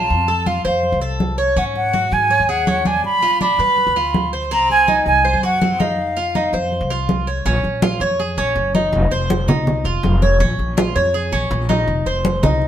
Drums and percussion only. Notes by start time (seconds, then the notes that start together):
0.10 high conga
0.28 high conga
0.46 high conga
0.65 high conga
0.83 high conga
1.02 high conga
1.20 high conga
1.57 high conga
1.76 high conga
1.94 high conga
2.12 high conga
2.30 high conga
2.49 high conga
2.67 high conga
2.85 high conga
3.04 high conga
3.22 high conga
3.41 high conga
3.59 high conga
3.78 high conga
3.96 high conga
4.14 high conga
4.51 high conga
4.70 high conga
4.88 high conga
5.07 high conga
5.25 high conga
5.43 high conga
5.62 high conga
5.80 high conga
5.99 high conga
6.17 high conga
6.35 high conga
6.53 high conga
6.72 high conga
6.91 high conga
7.09 high conga
7.46 high conga
7.65 high conga
7.82 high conga
8.01 high conga
8.20 high conga
8.38 high conga
8.56 high conga
8.75 high conga
8.93 high conga
9.12 high conga
9.30 high conga
9.49 high conga, low conga
9.67 high conga, low conga
9.86 high conga
10.04 high conga
10.22 high conga
10.41 high conga
10.59 high conga
10.78 high conga
10.96 high conga
11.14 high conga
11.33 high conga
11.51 high conga
11.70 high conga
11.88 high conga
12.06 high conga
12.25 high conga
12.43 high conga, low conga
12.62 high conga